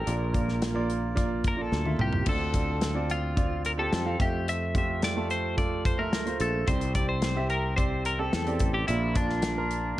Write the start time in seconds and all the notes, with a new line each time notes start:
Already playing: A#4
0.06 A#1 A#2 A#3 F4 D5, closed hi-hat
0.32 A#3 F4 D5, kick, closed hi-hat
0.48 snare
0.62 snare, closed hi-hat
0.74 A#3 F4 D5
0.90 closed hi-hat
1.15 A#3 F4 D5, kick, closed hi-hat
1.44 A#4, kick, closed hi-hat
1.56 A#3 F4 D5
1.62 A4
1.72 D2, snare
1.85 A#3 F4 E5, high tom
1.99 C2 G4, mid tom
2.13 floor tom
2.26 D2 D3 C4 F4 A4 D5, kick, crash
2.54 C4 F4 D5, kick, closed hi-hat
2.81 snare, closed hi-hat
2.94 C4 F4 D5
3.10 F4, closed hi-hat
3.36 C4 F4 D5, kick, closed hi-hat
3.65 A#4, closed hi-hat
3.78 C4 F4 G4 A4
3.93 F2, snare, closed hi-hat
4.05 C4 F4 F5
4.19 F2 A3 F4 G4 E5, kick, closed hi-hat
4.48 E5, closed hi-hat
4.75 A3 F4 G4 E5, kick, closed hi-hat
5.02 D5, snare, closed hi-hat
5.16 A3 F4 A4
5.30 C5, closed hi-hat
5.57 A3 F4 A4 D5, kick, closed hi-hat
5.85 C5, kick, closed hi-hat
5.98 A3 F4 A#4 E5
6.13 D2, snare, closed hi-hat
6.25 A3 F4 C5, closed hi-hat
6.40 A#1 A4, closed hi-hat
6.67 C2 C3 C4 G4 C5 D5, kick, closed hi-hat
6.81 closed hi-hat
6.95 C4 G4 D5, kick, closed hi-hat
7.09 C5
7.22 snare, closed hi-hat
7.36 C4 G4 E5
7.50 A#4, closed hi-hat
7.76 C4 G4 C5 D5, kick, closed hi-hat
8.05 A#4, closed hi-hat
8.19 C4 G4 A4
8.33 E2, snare, closed hi-hat
8.47 C4 G4 D5, closed hi-hat
8.59 A1, kick, closed hi-hat
8.74 G4
8.88 A#1 A#2 A#3 E4 F4 D5, closed hi-hat
9.15 A#3 D4 F4 D5, kick, closed hi-hat
9.29 snare
9.42 snare, closed hi-hat
9.57 A#3 F4 A#4
9.71 closed hi-hat